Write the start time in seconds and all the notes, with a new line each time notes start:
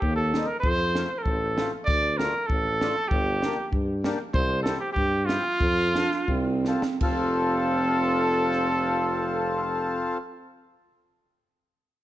0.00 D#2 G4, kick
0.16 A4
0.33 G3 C4 D#4, snare
0.46 A#4
0.60 C5, kick
0.64 F2
0.95 A3 C4 F4, snare
1.18 A#4
1.23 A1 A4, kick
1.58 A3 C4 F4, snare
1.84 D2 D5, kick
2.18 A3 D4 A#4, snare
2.22 F4
2.46 A1 A4, kick
2.81 A3 D4 F4, snare
3.08 G1 G4, kick
3.42 A#3 D4 G4, snare
3.72 G2, kick
4.04 A#3 D4 G4, snare
4.34 C2 C5, kick
4.63 A4, snare
4.67 C4 E4 G4
4.80 G4
4.93 G2 G4, kick
5.26 F4, snare
5.30 C4 E4 G4
5.60 F2, kick
5.95 C4 D4 F4 A4, snare
6.11 snare
6.28 C2 C4, kick
6.65 C4 F4 A4, snare
6.82 snare
7.00 F1 C4 F4 A4, kick, crash
8.53 cross-stick